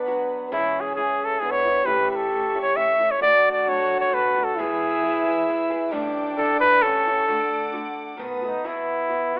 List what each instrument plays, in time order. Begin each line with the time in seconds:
Already playing: french horn B3, trumpet D4, violin section B4 F#5
0.06 nylon-string guitar F#3 B3 D4 F#4
0.52 upright bass E2, nylon-string guitar E2 B2 E3 G#3 E4, french horn C#4, trumpet E4, violin section G#4 E5
0.81 trumpet G#4
0.95 nylon-string guitar E3 G#3 E4, trumpet G#4
1.25 trumpet A4
1.39 nylon-string guitar E3 G#3 D4 E4, french horn B3, trumpet G#4
1.51 trumpet C#5
1.64 nylon-string guitar E3 G#3 D4 E4
1.85 upright bass A1, nylon-string guitar A2 E3 A3 C#4 E4, french horn G4, violin section A4 C#6, trumpet B4
2.11 trumpet B4
2.16 trumpet A4
2.31 nylon-string guitar E3 A3 C#4 E4
2.54 nylon-string guitar A3 C#4 E4
2.61 trumpet C#5
2.75 nylon-string guitar E3 A3 C#4 E4, trumpet E5
2.99 nylon-string guitar A3 C#4 E4
3.11 trumpet C#5
3.20 upright bass D2, nylon-string guitar D3 A3 D4 F#4, french horn F#4, violin section A4 F#5 A5, trumpet D5
3.52 trumpet D5
3.66 nylon-string guitar D3 A3 D4 F#4, trumpet C#5
4.00 trumpet C#5
4.11 nylon-string guitar D3 A3 D4 F#4, trumpet B4
4.36 nylon-string guitar A3 D4 F#4
4.44 trumpet A4
4.57 nylon-string guitar E2 B2 E3 G#3 B3 G#4, upright bass E2, french horn E4, trumpet G#4, violin section B4 G#5 E6
5.03 nylon-string guitar E3 G#3 B3 G#4
5.26 nylon-string guitar E3 G#3 B3 G#4
5.48 nylon-string guitar G#3 B3 G#4
5.70 nylon-string guitar E3 G#3 B3 G#4
5.91 upright bass A1, nylon-string guitar A2 E3 G3 D4 E4, french horn D4, violin section A4 G5 D6
6.37 nylon-string guitar E3 G3 D4 E4, trumpet A4
6.60 nylon-string guitar G3 D4 E4, trumpet B4
6.82 upright bass A1, nylon-string guitar E3 G3 C#4 E4, french horn C#4, trumpet A4, violin section A4 C#6
7.06 nylon-string guitar G3 C#4 E4
7.27 upright bass D2, nylon-string guitar D3 A3 D4 F#4, french horn D4, violin section F#5 D6
7.72 nylon-string guitar D3 A3 D4 F#4
8.17 upright bass B1, nylon-string guitar D#3 A3 B3 F#4, french horn B3, violin section A5
8.21 violin section B4 D#6
8.42 nylon-string guitar A3 B3 F#4, trumpet D#4
8.64 nylon-string guitar E2 B2 E3 B3 E4 F#4, upright bass E2, french horn B3, trumpet E4
9.09 nylon-string guitar E3 B3 E4 F#4
9.33 nylon-string guitar E3 B3 E4 F#4